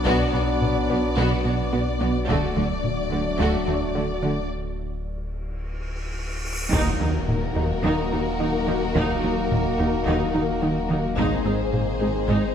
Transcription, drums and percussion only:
0, 0, Header, 1, 2, 480
1, 0, Start_track
1, 0, Tempo, 555556
1, 54, Time_signature, 4, 2, 24, 8
1, 10841, End_track
2, 0, Start_track
2, 0, Title_t, "Taiko and cinematic ensemble drums"
2, 50, Note_on_c, 9, 41, 93
2, 137, Note_off_c, 9, 41, 0
2, 529, Note_on_c, 9, 45, 66
2, 615, Note_off_c, 9, 45, 0
2, 1972, Note_on_c, 9, 41, 94
2, 2058, Note_off_c, 9, 41, 0
2, 2453, Note_on_c, 9, 45, 68
2, 2539, Note_off_c, 9, 45, 0
2, 5813, Note_on_c, 9, 41, 107
2, 5899, Note_off_c, 9, 41, 0
2, 6293, Note_on_c, 9, 45, 73
2, 6379, Note_off_c, 9, 45, 0
2, 7735, Note_on_c, 9, 41, 108
2, 7822, Note_off_c, 9, 41, 0
2, 8218, Note_on_c, 9, 45, 75
2, 8305, Note_off_c, 9, 45, 0
2, 9654, Note_on_c, 9, 41, 97
2, 9740, Note_off_c, 9, 41, 0
2, 10135, Note_on_c, 9, 45, 68
2, 10221, Note_off_c, 9, 45, 0
2, 10841, End_track
0, 0, End_of_file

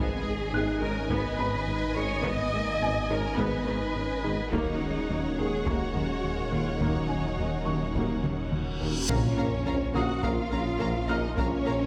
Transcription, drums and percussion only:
0, 0, Header, 1, 2, 480
1, 0, Start_track
1, 0, Tempo, 571429
1, 1886, Time_signature, 4, 2, 24, 8
1, 9967, End_track
2, 0, Start_track
2, 0, Title_t, "Taiko and cinematic ensemble drums"
2, 921, Note_on_c, 9, 41, 70
2, 1005, Note_off_c, 9, 41, 0
2, 1881, Note_on_c, 9, 41, 86
2, 1965, Note_off_c, 9, 41, 0
2, 2840, Note_on_c, 9, 41, 77
2, 2924, Note_off_c, 9, 41, 0
2, 3803, Note_on_c, 9, 41, 89
2, 3887, Note_off_c, 9, 41, 0
2, 4762, Note_on_c, 9, 41, 78
2, 4846, Note_off_c, 9, 41, 0
2, 5720, Note_on_c, 9, 41, 84
2, 5804, Note_off_c, 9, 41, 0
2, 6678, Note_on_c, 9, 41, 75
2, 6762, Note_off_c, 9, 41, 0
2, 6915, Note_on_c, 9, 47, 78
2, 6999, Note_off_c, 9, 47, 0
2, 7157, Note_on_c, 9, 47, 71
2, 7241, Note_off_c, 9, 47, 0
2, 7398, Note_on_c, 9, 43, 75
2, 7482, Note_off_c, 9, 43, 0
2, 7640, Note_on_c, 9, 41, 99
2, 7724, Note_off_c, 9, 41, 0
2, 8362, Note_on_c, 9, 47, 44
2, 8446, Note_off_c, 9, 47, 0
2, 8597, Note_on_c, 9, 41, 80
2, 8681, Note_off_c, 9, 41, 0
2, 9557, Note_on_c, 9, 41, 93
2, 9641, Note_off_c, 9, 41, 0
2, 9967, End_track
0, 0, End_of_file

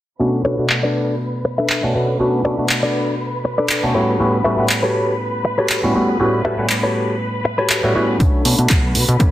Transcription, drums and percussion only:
0, 0, Header, 1, 2, 480
1, 0, Start_track
1, 0, Key_signature, 2, "minor"
1, 0, Tempo, 500000
1, 193, Time_signature, 4, 2, 24, 8
1, 8940, End_track
2, 0, Start_track
2, 0, Title_t, "Drums"
2, 669, Note_on_c, 9, 39, 111
2, 765, Note_off_c, 9, 39, 0
2, 1629, Note_on_c, 9, 39, 110
2, 1725, Note_off_c, 9, 39, 0
2, 2587, Note_on_c, 9, 39, 113
2, 2683, Note_off_c, 9, 39, 0
2, 3547, Note_on_c, 9, 39, 112
2, 3643, Note_off_c, 9, 39, 0
2, 4507, Note_on_c, 9, 39, 109
2, 4603, Note_off_c, 9, 39, 0
2, 5467, Note_on_c, 9, 39, 111
2, 5563, Note_off_c, 9, 39, 0
2, 6428, Note_on_c, 9, 39, 107
2, 6524, Note_off_c, 9, 39, 0
2, 7389, Note_on_c, 9, 39, 107
2, 7485, Note_off_c, 9, 39, 0
2, 7873, Note_on_c, 9, 36, 110
2, 7873, Note_on_c, 9, 42, 67
2, 7969, Note_off_c, 9, 36, 0
2, 7969, Note_off_c, 9, 42, 0
2, 7997, Note_on_c, 9, 54, 31
2, 8093, Note_off_c, 9, 54, 0
2, 8113, Note_on_c, 9, 46, 98
2, 8209, Note_off_c, 9, 46, 0
2, 8242, Note_on_c, 9, 42, 53
2, 8338, Note_off_c, 9, 42, 0
2, 8348, Note_on_c, 9, 39, 115
2, 8353, Note_on_c, 9, 36, 114
2, 8353, Note_on_c, 9, 42, 64
2, 8444, Note_off_c, 9, 39, 0
2, 8449, Note_off_c, 9, 36, 0
2, 8449, Note_off_c, 9, 42, 0
2, 8592, Note_on_c, 9, 46, 93
2, 8688, Note_off_c, 9, 46, 0
2, 8723, Note_on_c, 9, 42, 51
2, 8819, Note_off_c, 9, 42, 0
2, 8832, Note_on_c, 9, 36, 111
2, 8832, Note_on_c, 9, 42, 64
2, 8928, Note_off_c, 9, 36, 0
2, 8928, Note_off_c, 9, 42, 0
2, 8940, End_track
0, 0, End_of_file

